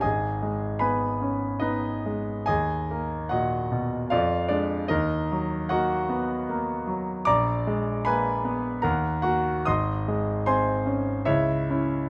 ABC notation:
X:1
M:3/4
L:1/8
Q:1/4=75
K:G#m
V:1 name="Grand piano"
[Gdg]2 [Bgb]2 [DBd]2 | [Gdg]2 [Fdf]2 [=F=d=f] [=Dd] | [DAd]2 [Fdf]2 z2 | [=da=d']2 [Bgb]2 [Afa] [Ff] |
[d^bd']2 [^Bgb]2 [Ece]2 |]
V:2 name="Grand piano" clef=bass
G,,, G, B, C B, G, | D,, A, A,, B,, =F,, _A, | D,, F, A, B, A, F, | A,,, G, A, B, D,, A, |
G,,, G, ^B, C C,, [CE] |]